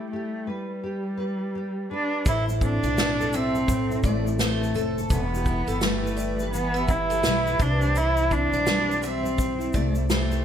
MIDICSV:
0, 0, Header, 1, 6, 480
1, 0, Start_track
1, 0, Key_signature, 0, "minor"
1, 0, Tempo, 712589
1, 1520, Time_signature, 4, 2, 24, 8
1, 7038, End_track
2, 0, Start_track
2, 0, Title_t, "Steel-string acoustic guitar"
2, 0, Program_c, 0, 25
2, 1532, Note_on_c, 0, 72, 81
2, 1754, Note_off_c, 0, 72, 0
2, 1910, Note_on_c, 0, 74, 75
2, 2135, Note_off_c, 0, 74, 0
2, 2249, Note_on_c, 0, 76, 80
2, 2381, Note_off_c, 0, 76, 0
2, 2727, Note_on_c, 0, 74, 76
2, 2860, Note_off_c, 0, 74, 0
2, 2963, Note_on_c, 0, 72, 81
2, 3098, Note_off_c, 0, 72, 0
2, 3203, Note_on_c, 0, 69, 78
2, 3338, Note_off_c, 0, 69, 0
2, 3439, Note_on_c, 0, 71, 86
2, 3667, Note_off_c, 0, 71, 0
2, 3823, Note_on_c, 0, 69, 78
2, 3914, Note_off_c, 0, 69, 0
2, 3914, Note_on_c, 0, 71, 71
2, 4144, Note_off_c, 0, 71, 0
2, 4154, Note_on_c, 0, 74, 79
2, 4293, Note_off_c, 0, 74, 0
2, 4540, Note_on_c, 0, 76, 75
2, 4632, Note_off_c, 0, 76, 0
2, 4783, Note_on_c, 0, 69, 75
2, 4869, Note_off_c, 0, 69, 0
2, 4872, Note_on_c, 0, 71, 73
2, 5012, Note_off_c, 0, 71, 0
2, 5114, Note_on_c, 0, 72, 72
2, 5254, Note_off_c, 0, 72, 0
2, 5359, Note_on_c, 0, 72, 85
2, 5588, Note_off_c, 0, 72, 0
2, 5750, Note_on_c, 0, 74, 74
2, 5976, Note_off_c, 0, 74, 0
2, 6086, Note_on_c, 0, 76, 77
2, 6221, Note_off_c, 0, 76, 0
2, 6562, Note_on_c, 0, 74, 75
2, 6700, Note_off_c, 0, 74, 0
2, 6805, Note_on_c, 0, 72, 81
2, 6941, Note_off_c, 0, 72, 0
2, 7038, End_track
3, 0, Start_track
3, 0, Title_t, "Nylon-string guitar"
3, 0, Program_c, 1, 24
3, 0, Note_on_c, 1, 55, 66
3, 0, Note_on_c, 1, 64, 50
3, 0, Note_on_c, 1, 67, 55
3, 86, Note_off_c, 1, 67, 0
3, 89, Note_on_c, 1, 67, 54
3, 317, Note_on_c, 1, 71, 53
3, 555, Note_off_c, 1, 67, 0
3, 563, Note_on_c, 1, 67, 50
3, 783, Note_off_c, 1, 71, 0
3, 791, Note_on_c, 1, 71, 59
3, 1037, Note_off_c, 1, 67, 0
3, 1045, Note_on_c, 1, 67, 50
3, 1275, Note_off_c, 1, 71, 0
3, 1286, Note_on_c, 1, 71, 53
3, 1521, Note_on_c, 1, 45, 74
3, 1524, Note_off_c, 1, 55, 0
3, 1580, Note_off_c, 1, 67, 0
3, 1580, Note_off_c, 1, 71, 0
3, 1668, Note_off_c, 1, 64, 0
3, 1668, Note_on_c, 1, 64, 59
3, 1761, Note_on_c, 1, 60, 54
3, 1910, Note_off_c, 1, 64, 0
3, 1912, Note_on_c, 1, 64, 53
3, 2005, Note_on_c, 1, 57, 67
3, 2154, Note_on_c, 1, 69, 59
3, 2237, Note_off_c, 1, 60, 0
3, 2245, Note_on_c, 1, 60, 51
3, 2382, Note_off_c, 1, 69, 0
3, 2390, Note_on_c, 1, 69, 67
3, 2474, Note_off_c, 1, 45, 0
3, 2482, Note_on_c, 1, 45, 74
3, 2618, Note_off_c, 1, 64, 0
3, 2621, Note_on_c, 1, 64, 55
3, 2722, Note_off_c, 1, 60, 0
3, 2729, Note_on_c, 1, 60, 58
3, 2859, Note_off_c, 1, 64, 0
3, 2862, Note_on_c, 1, 64, 54
3, 2953, Note_off_c, 1, 57, 0
3, 2961, Note_on_c, 1, 57, 68
3, 3100, Note_off_c, 1, 69, 0
3, 3109, Note_on_c, 1, 69, 65
3, 3199, Note_off_c, 1, 60, 0
3, 3207, Note_on_c, 1, 60, 55
3, 3346, Note_off_c, 1, 69, 0
3, 3353, Note_on_c, 1, 69, 65
3, 3441, Note_on_c, 1, 52, 76
3, 3497, Note_off_c, 1, 57, 0
3, 3498, Note_off_c, 1, 45, 0
3, 3501, Note_off_c, 1, 60, 0
3, 3501, Note_off_c, 1, 69, 0
3, 3587, Note_off_c, 1, 64, 0
3, 3590, Note_on_c, 1, 67, 61
3, 3689, Note_on_c, 1, 64, 59
3, 3817, Note_off_c, 1, 67, 0
3, 3820, Note_on_c, 1, 67, 56
3, 3923, Note_on_c, 1, 55, 60
3, 4062, Note_on_c, 1, 71, 68
3, 4160, Note_off_c, 1, 64, 0
3, 4163, Note_on_c, 1, 64, 52
3, 4302, Note_off_c, 1, 71, 0
3, 4313, Note_on_c, 1, 71, 62
3, 4403, Note_off_c, 1, 52, 0
3, 4406, Note_on_c, 1, 52, 75
3, 4559, Note_off_c, 1, 67, 0
3, 4561, Note_on_c, 1, 67, 59
3, 4650, Note_off_c, 1, 64, 0
3, 4652, Note_on_c, 1, 64, 63
3, 4791, Note_off_c, 1, 67, 0
3, 4794, Note_on_c, 1, 67, 59
3, 4899, Note_off_c, 1, 55, 0
3, 4902, Note_on_c, 1, 55, 63
3, 5028, Note_off_c, 1, 71, 0
3, 5035, Note_on_c, 1, 71, 66
3, 5128, Note_on_c, 1, 48, 81
3, 5183, Note_off_c, 1, 71, 0
3, 5273, Note_on_c, 1, 72, 70
3, 5364, Note_off_c, 1, 48, 0
3, 5509, Note_off_c, 1, 67, 0
3, 5512, Note_off_c, 1, 64, 0
3, 5512, Note_on_c, 1, 64, 58
3, 5607, Note_on_c, 1, 60, 58
3, 5740, Note_off_c, 1, 64, 0
3, 5748, Note_on_c, 1, 64, 53
3, 5837, Note_off_c, 1, 55, 0
3, 5840, Note_on_c, 1, 55, 66
3, 5982, Note_off_c, 1, 72, 0
3, 5985, Note_on_c, 1, 72, 63
3, 6073, Note_off_c, 1, 60, 0
3, 6076, Note_on_c, 1, 60, 52
3, 6214, Note_off_c, 1, 72, 0
3, 6217, Note_on_c, 1, 72, 67
3, 6448, Note_off_c, 1, 64, 0
3, 6456, Note_on_c, 1, 64, 57
3, 6560, Note_off_c, 1, 60, 0
3, 6563, Note_on_c, 1, 60, 58
3, 6700, Note_off_c, 1, 64, 0
3, 6708, Note_on_c, 1, 64, 58
3, 6763, Note_off_c, 1, 52, 0
3, 6793, Note_off_c, 1, 55, 0
3, 6801, Note_on_c, 1, 55, 64
3, 6936, Note_off_c, 1, 72, 0
3, 6939, Note_on_c, 1, 72, 66
3, 7038, Note_off_c, 1, 55, 0
3, 7038, Note_off_c, 1, 60, 0
3, 7038, Note_off_c, 1, 64, 0
3, 7038, Note_off_c, 1, 72, 0
3, 7038, End_track
4, 0, Start_track
4, 0, Title_t, "Cello"
4, 0, Program_c, 2, 42
4, 0, Note_on_c, 2, 57, 81
4, 73, Note_off_c, 2, 57, 0
4, 77, Note_on_c, 2, 57, 77
4, 330, Note_on_c, 2, 55, 77
4, 340, Note_off_c, 2, 57, 0
4, 1285, Note_off_c, 2, 55, 0
4, 1300, Note_on_c, 2, 62, 87
4, 1514, Note_off_c, 2, 62, 0
4, 1541, Note_on_c, 2, 64, 97
4, 1644, Note_off_c, 2, 64, 0
4, 1779, Note_on_c, 2, 62, 103
4, 2257, Note_on_c, 2, 60, 105
4, 2267, Note_off_c, 2, 62, 0
4, 2728, Note_off_c, 2, 60, 0
4, 2736, Note_on_c, 2, 57, 87
4, 2951, Note_off_c, 2, 57, 0
4, 2975, Note_on_c, 2, 57, 90
4, 3324, Note_off_c, 2, 57, 0
4, 3450, Note_on_c, 2, 59, 98
4, 3927, Note_on_c, 2, 57, 90
4, 3937, Note_off_c, 2, 59, 0
4, 4400, Note_off_c, 2, 57, 0
4, 4404, Note_on_c, 2, 59, 102
4, 4647, Note_on_c, 2, 64, 97
4, 4657, Note_off_c, 2, 59, 0
4, 5132, Note_on_c, 2, 62, 95
4, 5142, Note_off_c, 2, 64, 0
4, 5371, Note_on_c, 2, 64, 102
4, 5381, Note_off_c, 2, 62, 0
4, 5610, Note_on_c, 2, 62, 105
4, 5620, Note_off_c, 2, 64, 0
4, 6088, Note_on_c, 2, 60, 97
4, 6098, Note_off_c, 2, 62, 0
4, 6570, Note_on_c, 2, 57, 81
4, 6580, Note_off_c, 2, 60, 0
4, 6802, Note_off_c, 2, 57, 0
4, 6806, Note_on_c, 2, 57, 86
4, 7038, Note_off_c, 2, 57, 0
4, 7038, End_track
5, 0, Start_track
5, 0, Title_t, "Upright bass"
5, 0, Program_c, 3, 32
5, 1519, Note_on_c, 3, 33, 93
5, 1876, Note_off_c, 3, 33, 0
5, 1906, Note_on_c, 3, 35, 85
5, 2693, Note_off_c, 3, 35, 0
5, 2718, Note_on_c, 3, 33, 90
5, 3171, Note_off_c, 3, 33, 0
5, 3195, Note_on_c, 3, 29, 82
5, 3417, Note_off_c, 3, 29, 0
5, 3434, Note_on_c, 3, 28, 100
5, 3794, Note_off_c, 3, 28, 0
5, 3822, Note_on_c, 3, 31, 82
5, 4852, Note_off_c, 3, 31, 0
5, 4880, Note_on_c, 3, 35, 92
5, 5101, Note_off_c, 3, 35, 0
5, 5113, Note_on_c, 3, 36, 101
5, 5715, Note_off_c, 3, 36, 0
5, 5737, Note_on_c, 3, 35, 82
5, 6532, Note_off_c, 3, 35, 0
5, 6559, Note_on_c, 3, 36, 92
5, 7016, Note_off_c, 3, 36, 0
5, 7038, End_track
6, 0, Start_track
6, 0, Title_t, "Drums"
6, 1519, Note_on_c, 9, 82, 65
6, 1522, Note_on_c, 9, 36, 106
6, 1528, Note_off_c, 9, 82, 0
6, 1528, Note_on_c, 9, 82, 57
6, 1589, Note_off_c, 9, 36, 0
6, 1595, Note_off_c, 9, 82, 0
6, 1678, Note_on_c, 9, 82, 53
6, 1746, Note_off_c, 9, 82, 0
6, 1760, Note_on_c, 9, 36, 86
6, 1762, Note_on_c, 9, 82, 49
6, 1828, Note_off_c, 9, 36, 0
6, 1829, Note_off_c, 9, 82, 0
6, 1909, Note_on_c, 9, 82, 40
6, 1977, Note_off_c, 9, 82, 0
6, 2006, Note_on_c, 9, 82, 64
6, 2008, Note_off_c, 9, 82, 0
6, 2008, Note_on_c, 9, 38, 108
6, 2008, Note_on_c, 9, 82, 58
6, 2075, Note_off_c, 9, 38, 0
6, 2075, Note_off_c, 9, 82, 0
6, 2161, Note_on_c, 9, 82, 41
6, 2228, Note_off_c, 9, 82, 0
6, 2241, Note_on_c, 9, 82, 52
6, 2247, Note_off_c, 9, 82, 0
6, 2247, Note_on_c, 9, 82, 53
6, 2314, Note_off_c, 9, 82, 0
6, 2392, Note_on_c, 9, 82, 44
6, 2459, Note_off_c, 9, 82, 0
6, 2480, Note_on_c, 9, 36, 83
6, 2483, Note_on_c, 9, 82, 68
6, 2484, Note_off_c, 9, 82, 0
6, 2484, Note_on_c, 9, 82, 67
6, 2548, Note_off_c, 9, 36, 0
6, 2551, Note_off_c, 9, 82, 0
6, 2636, Note_on_c, 9, 82, 41
6, 2703, Note_off_c, 9, 82, 0
6, 2716, Note_on_c, 9, 82, 49
6, 2719, Note_on_c, 9, 36, 86
6, 2728, Note_off_c, 9, 82, 0
6, 2728, Note_on_c, 9, 82, 41
6, 2786, Note_off_c, 9, 36, 0
6, 2796, Note_off_c, 9, 82, 0
6, 2876, Note_on_c, 9, 82, 45
6, 2943, Note_off_c, 9, 82, 0
6, 2958, Note_on_c, 9, 38, 101
6, 2958, Note_on_c, 9, 82, 73
6, 2974, Note_off_c, 9, 82, 0
6, 2974, Note_on_c, 9, 82, 69
6, 3026, Note_off_c, 9, 38, 0
6, 3041, Note_off_c, 9, 82, 0
6, 3122, Note_on_c, 9, 82, 41
6, 3190, Note_off_c, 9, 82, 0
6, 3198, Note_on_c, 9, 82, 46
6, 3218, Note_off_c, 9, 82, 0
6, 3218, Note_on_c, 9, 82, 41
6, 3285, Note_off_c, 9, 82, 0
6, 3356, Note_on_c, 9, 82, 48
6, 3424, Note_off_c, 9, 82, 0
6, 3435, Note_on_c, 9, 82, 69
6, 3438, Note_on_c, 9, 36, 112
6, 3450, Note_off_c, 9, 82, 0
6, 3450, Note_on_c, 9, 82, 57
6, 3505, Note_off_c, 9, 36, 0
6, 3518, Note_off_c, 9, 82, 0
6, 3601, Note_on_c, 9, 82, 49
6, 3668, Note_off_c, 9, 82, 0
6, 3675, Note_on_c, 9, 82, 46
6, 3676, Note_on_c, 9, 36, 83
6, 3743, Note_off_c, 9, 82, 0
6, 3744, Note_off_c, 9, 36, 0
6, 3821, Note_on_c, 9, 82, 44
6, 3831, Note_off_c, 9, 82, 0
6, 3831, Note_on_c, 9, 82, 43
6, 3898, Note_off_c, 9, 82, 0
6, 3915, Note_on_c, 9, 82, 62
6, 3916, Note_on_c, 9, 38, 107
6, 3925, Note_off_c, 9, 82, 0
6, 3925, Note_on_c, 9, 82, 57
6, 3984, Note_off_c, 9, 38, 0
6, 3993, Note_off_c, 9, 82, 0
6, 4087, Note_on_c, 9, 82, 42
6, 4154, Note_off_c, 9, 82, 0
6, 4156, Note_on_c, 9, 82, 48
6, 4168, Note_off_c, 9, 82, 0
6, 4168, Note_on_c, 9, 82, 53
6, 4236, Note_off_c, 9, 82, 0
6, 4307, Note_on_c, 9, 82, 46
6, 4374, Note_off_c, 9, 82, 0
6, 4401, Note_on_c, 9, 82, 71
6, 4410, Note_off_c, 9, 82, 0
6, 4410, Note_on_c, 9, 82, 65
6, 4477, Note_off_c, 9, 82, 0
6, 4550, Note_on_c, 9, 82, 41
6, 4618, Note_off_c, 9, 82, 0
6, 4634, Note_on_c, 9, 82, 50
6, 4638, Note_on_c, 9, 36, 86
6, 4648, Note_off_c, 9, 82, 0
6, 4648, Note_on_c, 9, 82, 41
6, 4705, Note_off_c, 9, 36, 0
6, 4716, Note_off_c, 9, 82, 0
6, 4785, Note_on_c, 9, 82, 44
6, 4790, Note_off_c, 9, 82, 0
6, 4790, Note_on_c, 9, 82, 44
6, 4858, Note_off_c, 9, 82, 0
6, 4873, Note_on_c, 9, 82, 74
6, 4874, Note_on_c, 9, 38, 102
6, 4887, Note_off_c, 9, 82, 0
6, 4887, Note_on_c, 9, 82, 66
6, 4941, Note_off_c, 9, 38, 0
6, 4955, Note_off_c, 9, 82, 0
6, 5031, Note_on_c, 9, 82, 43
6, 5098, Note_off_c, 9, 82, 0
6, 5115, Note_on_c, 9, 82, 45
6, 5117, Note_on_c, 9, 36, 105
6, 5123, Note_off_c, 9, 82, 0
6, 5123, Note_on_c, 9, 82, 46
6, 5184, Note_off_c, 9, 36, 0
6, 5191, Note_off_c, 9, 82, 0
6, 5264, Note_on_c, 9, 82, 45
6, 5331, Note_off_c, 9, 82, 0
6, 5358, Note_on_c, 9, 82, 66
6, 5367, Note_off_c, 9, 82, 0
6, 5367, Note_on_c, 9, 82, 58
6, 5434, Note_off_c, 9, 82, 0
6, 5503, Note_on_c, 9, 82, 49
6, 5571, Note_off_c, 9, 82, 0
6, 5598, Note_on_c, 9, 82, 49
6, 5599, Note_on_c, 9, 36, 84
6, 5666, Note_off_c, 9, 36, 0
6, 5666, Note_off_c, 9, 82, 0
6, 5746, Note_on_c, 9, 82, 40
6, 5813, Note_off_c, 9, 82, 0
6, 5837, Note_on_c, 9, 82, 66
6, 5838, Note_off_c, 9, 82, 0
6, 5838, Note_on_c, 9, 38, 111
6, 5838, Note_on_c, 9, 82, 58
6, 5906, Note_off_c, 9, 38, 0
6, 5906, Note_off_c, 9, 82, 0
6, 6005, Note_on_c, 9, 82, 44
6, 6073, Note_off_c, 9, 82, 0
6, 6077, Note_on_c, 9, 82, 50
6, 6083, Note_off_c, 9, 82, 0
6, 6083, Note_on_c, 9, 82, 55
6, 6151, Note_off_c, 9, 82, 0
6, 6235, Note_on_c, 9, 82, 47
6, 6302, Note_off_c, 9, 82, 0
6, 6320, Note_on_c, 9, 82, 69
6, 6321, Note_on_c, 9, 36, 82
6, 6328, Note_off_c, 9, 82, 0
6, 6328, Note_on_c, 9, 82, 66
6, 6388, Note_off_c, 9, 36, 0
6, 6395, Note_off_c, 9, 82, 0
6, 6471, Note_on_c, 9, 82, 42
6, 6539, Note_off_c, 9, 82, 0
6, 6553, Note_on_c, 9, 82, 47
6, 6562, Note_on_c, 9, 36, 84
6, 6565, Note_off_c, 9, 82, 0
6, 6565, Note_on_c, 9, 82, 39
6, 6629, Note_off_c, 9, 36, 0
6, 6632, Note_off_c, 9, 82, 0
6, 6702, Note_on_c, 9, 82, 42
6, 6769, Note_off_c, 9, 82, 0
6, 6802, Note_on_c, 9, 38, 103
6, 6802, Note_on_c, 9, 82, 73
6, 6803, Note_off_c, 9, 82, 0
6, 6803, Note_on_c, 9, 82, 69
6, 6869, Note_off_c, 9, 38, 0
6, 6870, Note_off_c, 9, 82, 0
6, 6949, Note_on_c, 9, 82, 44
6, 7017, Note_off_c, 9, 82, 0
6, 7038, End_track
0, 0, End_of_file